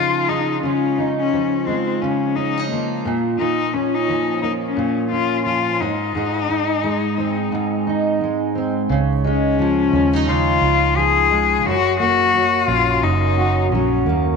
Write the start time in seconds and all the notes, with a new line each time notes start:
Already playing: C#3 F3 G#3 D#4 F4
0.29 G#3 D#4
0.63 C#3 C#4 F4
0.98 D#4
1.19 C#4
1.33 F3
1.67 G#3 C4
2.02 C#3 C#4
2.36 C#4 D#4
2.57 D#4
2.71 F3 A#3
3.05 A#2
3.39 A#2 D#4 F4
3.74 C#4
3.94 D#4
4.09 F3
4.43 A#3 D#4
4.64 C#4
4.77 A#2
5.11 C#4 F4
5.46 F3 F4
5.80 G#2 D#4
6.15 G#2 G#4
6.48 D#4
6.83 G#3
7.18 C4
7.52 G#2
7.87 D#4
8.21 G#3
8.55 C4
8.89 C#2 C#3
9.24 G#3 C#4
9.59 F3
9.93 D#2 C#4
10.13 D#4
10.27 C#3 F4
10.62 C#2 F4
10.96 F3 G#4
11.30 G#3
11.64 F#1 F#2 F#4
11.99 A#3 F#4
12.34 F#3
12.68 A#1 C#4 F4
13.02 F#1 F#2 D#4
13.38 F#4
13.71 A#1 F#3 C#4
14.06 D#2 A#3